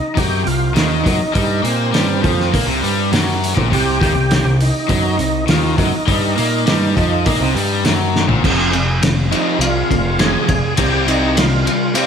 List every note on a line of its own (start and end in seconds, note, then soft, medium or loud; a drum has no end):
0.00 0.19 D#4 medium
0.15 0.44 F#2 medium
0.15 0.44 F#3 loud
0.15 0.48 G4 medium
0.15 kick loud
0.15 open hi-hat medium
0.45 0.74 C2 medium
0.45 0.69 C3 medium
0.45 0.74 F4 loud
0.45 open hi-hat soft
0.74 1.03 D#2 medium
0.74 1.04 D#3 medium
0.74 1.34 D#4 medium
0.74 snare medium
0.74 open hi-hat medium
1.04 1.19 F#2 medium
1.04 1.19 F#3 medium
1.04 kick loud
1.04 open hi-hat medium
1.33 1.62 G2 medium
1.33 1.62 G3 medium
1.33 1.65 D#4 medium
1.33 kick loud
1.33 open hi-hat medium
1.63 1.91 A#2 medium
1.63 1.92 A#3 loud
1.63 2.50 C4 medium
1.63 open hi-hat soft
1.92 2.22 G2 medium
1.92 2.22 G3 medium
1.92 snare loud
1.92 open hi-hat medium
2.22 2.51 F2 loud
2.22 2.51 F3 loud
2.22 kick loud
2.22 open hi-hat soft
2.41 snare soft
2.52 2.66 A#2 medium
2.52 2.66 A#3 loud
2.52 kick loud
2.52 open hi-hat medium
2.66 2.81 C2 medium
2.66 2.81 C3 loud
2.82 3.10 G2 medium
2.82 3.11 G3 loud
2.82 open hi-hat soft
3.12 3.53 F#2 medium
3.12 3.55 F#3 medium
3.12 snare medium
3.12 open hi-hat medium
3.44 open hi-hat medium
3.55 3.70 A#1 loud
3.55 3.70 A#2 medium
3.55 kick loud
3.70 3.99 C2 medium
3.70 3.99 C3 loud
3.70 kick medium
3.70 open hi-hat medium
3.74 4.01 G4 loud
4.00 4.14 D#2 medium
4.00 4.14 D#3 loud
4.00 4.57 G4 loud
4.00 kick loud
4.00 open hi-hat soft
4.15 4.42 C2 medium
4.15 4.39 C3 medium
4.31 snare loud
4.31 open hi-hat medium
4.45 4.72 C2 medium
4.45 4.69 C3 medium
4.61 4.89 D#4 medium
4.61 open hi-hat soft
4.88 5.17 F#2 medium
4.88 5.17 F#3 medium
4.88 5.45 D#4 medium
4.88 kick loud
4.88 open hi-hat medium
5.18 5.46 C2 medium
5.18 5.42 C3 medium
5.18 open hi-hat soft
5.47 5.76 D#2 medium
5.47 5.76 D#3 medium
5.47 5.76 F4 medium
5.47 snare medium
5.47 open hi-hat medium
5.77 5.91 F#2 medium
5.77 5.91 F#3 loud
5.77 7.51 D#4 medium
5.77 kick loud
5.77 open hi-hat soft
6.07 6.35 G2 medium
6.07 6.36 G3 loud
6.07 kick loud
6.07 open hi-hat medium
6.36 6.65 A#2 medium
6.36 6.65 A#3 loud
6.36 open hi-hat medium
6.66 6.94 G2 medium
6.66 6.95 G3 medium
6.66 snare loud
6.66 open hi-hat medium
6.96 7.24 F2 medium
6.96 7.24 F3 loud
6.96 kick loud
6.96 open hi-hat medium
7.26 7.39 A#2 medium
7.26 7.39 A#3 loud
7.26 kick loud
7.26 open hi-hat medium
7.40 7.54 C2 medium
7.40 7.54 C3 medium
7.54 7.83 G2 medium
7.54 7.83 G3 loud
7.54 open hi-hat soft
7.84 8.25 F#2 medium
7.84 8.28 F#3 medium
7.84 snare medium
7.84 open hi-hat medium
8.16 snare medium
8.27 8.41 A#1 medium
8.27 8.42 A#2 medium
8.27 floor tom medium
8.44 9.33 F1 medium
8.44 8.71 F2 medium
8.44 8.71 C3 medium
8.44 8.72 F3 medium
8.44 kick loud
8.44 crash loud
8.72 8.99 F2 medium
8.72 8.99 C3 medium
8.72 ride medium
9.02 9.28 F2 medium
9.02 9.29 C3 medium
9.02 snare loud
9.02 ride medium
9.31 9.59 F2 medium
9.31 9.59 C3 medium
9.31 9.59 F3 loud
9.31 9.58 D#4 medium
9.31 ride medium
9.59 9.82 C2 medium
9.59 9.87 F2 medium
9.59 9.87 C3 medium
9.59 10.21 F4 medium
9.59 ride medium
9.90 10.35 F1 medium
9.90 10.16 F2 medium
9.90 10.17 C3 medium
9.90 kick medium
9.90 ride medium
10.19 10.46 F2 medium
10.19 10.46 C3 medium
10.19 10.47 F3 medium
10.19 10.74 G#4 medium
10.19 snare medium
10.19 ride medium
10.47 10.60 F1 medium
10.47 10.74 F2 medium
10.47 10.74 C3 medium
10.47 kick medium
10.47 ride medium
10.77 11.68 C2 medium
10.77 11.05 C3 medium
10.77 11.05 G3 medium
10.77 11.05 C4 loud
10.77 11.08 G4 medium
10.77 kick loud
10.77 ride medium
11.06 11.34 C3 loud
11.06 11.34 G3 medium
11.06 11.34 C4 loud
11.06 11.38 D#4 medium
11.06 ride medium
11.37 11.63 C3 medium
11.37 11.63 G3 medium
11.37 11.97 F4 medium
11.37 snare loud
11.37 ride medium
11.65 11.92 C3 medium
11.65 11.92 G3 medium
11.65 ride medium
11.95 12.06 C3 medium
11.95 12.06 G3 loud
11.95 12.06 C4 loud
11.95 12.06 G4 medium
11.95 ride medium